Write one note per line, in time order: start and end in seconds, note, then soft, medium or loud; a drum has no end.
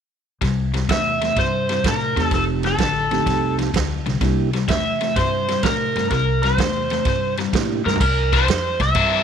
0.41 0.82 C2 medium
0.41 0.71 C3 medium
0.41 0.71 G3 medium
0.41 kick medium
0.41 snare soft
0.41 ride medium
0.74 0.88 C3 medium
0.74 0.88 G3 medium
0.74 snare soft
0.74 ride soft
0.89 1.29 E2 medium
0.89 1.18 C3 medium
0.89 1.18 A3 medium
0.89 1.39 E5 medium
0.89 kick medium
0.89 snare medium
0.89 ride medium
1.21 1.35 C3 medium
1.21 1.35 A3 medium
1.21 snare soft
1.21 ride medium
1.36 1.77 G2 medium
1.36 1.66 C3 medium
1.36 1.66 G3 medium
1.36 1.86 C5 medium
1.36 kick medium
1.36 snare soft
1.36 ride medium
1.69 1.83 C3 medium
1.69 1.83 G3 medium
1.69 snare soft
1.69 ride medium
1.84 2.11 A2 medium
1.84 2.13 C3 medium
1.84 2.14 A3 medium
1.84 2.23 A#4 medium
1.84 kick medium
1.84 snare medium
1.84 ride medium
2.16 2.29 E2 medium
2.16 2.30 C3 medium
2.16 2.76 A3 medium
2.16 2.30 A3 medium
2.16 2.76 C4 medium
2.16 2.76 D#4 medium
2.16 2.76 G4 medium
2.16 snare soft
2.16 ride soft
2.23 2.34 A4 medium
2.31 2.71 F1 medium
2.31 2.60 F2 medium
2.31 2.61 C3 medium
2.31 2.43 A4 medium
2.31 kick medium
2.31 snare soft
2.31 ride medium
2.63 2.78 F2 medium
2.63 2.78 C3 medium
2.63 3.56 A4 medium
2.63 snare soft
2.63 ride soft
2.78 3.19 A1 medium
2.78 3.08 F2 medium
2.78 3.08 D3 medium
2.78 kick medium
2.78 snare medium
2.78 ride medium
3.11 3.25 F2 medium
3.11 3.25 D3 medium
3.11 3.71 A3 medium
3.11 3.71 C4 medium
3.11 3.71 D#4 medium
3.11 3.72 G4 medium
3.11 snare soft
3.11 ride soft
3.26 3.66 C2 medium
3.26 3.55 F2 medium
3.26 3.56 C3 medium
3.26 kick medium
3.26 snare soft
3.26 ride medium
3.58 3.72 F2 medium
3.58 3.72 C3 medium
3.58 snare soft
3.58 ride medium
3.74 4.01 D2 medium
3.74 4.03 F2 medium
3.74 4.03 D3 medium
3.74 kick medium
3.74 snare medium
3.74 ride medium
4.06 4.19 C2 medium
4.06 4.20 F2 medium
4.06 4.20 D3 medium
4.06 snare soft
4.06 ride soft
4.21 4.61 C2 medium
4.21 4.50 C3 medium
4.21 4.50 G3 medium
4.21 4.50 A#3 medium
4.21 4.50 D4 soft
4.21 4.50 E4 soft
4.21 4.51 G4 medium
4.21 kick medium
4.21 snare soft
4.21 ride medium
4.53 4.67 C3 medium
4.53 4.67 G3 medium
4.53 snare soft
4.53 ride soft
4.68 5.08 E2 medium
4.68 4.98 C3 medium
4.68 4.98 A3 medium
4.68 5.18 E5 medium
4.68 kick medium
4.68 snare medium
4.68 ride medium
5.01 5.15 C3 medium
5.01 5.15 A3 medium
5.01 snare soft
5.01 ride soft
5.16 5.56 G2 medium
5.16 5.45 C3 medium
5.16 5.46 G3 medium
5.16 5.65 C5 medium
5.16 kick medium
5.16 snare soft
5.16 ride medium
5.48 5.62 C3 medium
5.48 5.62 G3 medium
5.48 snare soft
5.48 ride medium
5.63 5.91 A2 medium
5.63 5.93 C3 medium
5.63 5.93 A3 medium
5.63 6.10 A#4 medium
5.63 kick medium
5.63 snare medium
5.63 ride medium
5.96 6.08 G2 medium
5.96 6.10 C3 medium
5.96 6.10 A3 medium
5.96 snare soft
5.96 ride soft
6.10 6.51 C2 medium
6.10 6.40 C3 medium
6.10 6.40 G3 medium
6.10 6.44 A#4 medium
6.10 kick medium
6.10 snare soft
6.10 ride medium
6.42 6.57 C3 medium
6.42 6.58 G3 medium
6.42 7.34 C5 medium
6.42 snare soft
6.42 ride medium
6.58 6.98 E2 medium
6.58 6.88 C3 medium
6.58 6.88 A3 medium
6.58 kick medium
6.58 snare loud
6.58 ride medium
6.90 7.05 C3 medium
6.90 7.05 A3 medium
6.90 snare soft
6.90 ride soft
7.05 7.45 G2 medium
7.05 7.35 C3 medium
7.05 7.35 G3 medium
7.05 kick medium
7.05 snare soft
7.05 ride medium
7.37 7.52 C3 medium
7.37 7.52 G3 medium
7.37 snare soft
7.37 ride soft
7.53 7.80 A2 medium
7.53 7.82 C3 medium
7.53 7.82 A3 medium
7.53 7.82 A#3 medium
7.53 7.82 D4 soft
7.53 7.83 E4 soft
7.53 7.83 G4 medium
7.53 kick medium
7.53 snare medium
7.53 ride medium
7.85 7.98 G2 medium
7.85 7.99 C3 medium
7.85 7.99 A3 medium
7.85 8.00 A#4 medium
7.85 snare soft
7.96 floor tom medium
8.00 8.45 C2 medium
8.00 8.34 A#4 medium
8.00 muted overdriven electric guitar stroke soft
8.00 kick loud
8.00 crash medium
8.32 8.46 C3 medium
8.32 8.47 E3 medium
8.32 8.47 A#3 medium
8.32 8.47 D4 medium
8.32 8.82 C5 medium
8.32 kick medium
8.32 snare soft
8.32 ride medium
8.48 8.78 F2 medium
8.48 muted overdriven electric guitar stroke soft
8.48 snare loud
8.48 ride medium
8.80 8.94 C2 medium
8.80 9.23 E5 medium
8.80 muted overdriven electric guitar stroke soft
8.80 kick medium
8.80 snare soft
8.80 ride medium
8.95 9.23 G2 medium
8.95 9.23 C3 medium
8.95 9.23 E3 medium
8.95 9.23 A#3 medium
8.95 9.23 D4 medium
8.95 kick loud
8.95 ride medium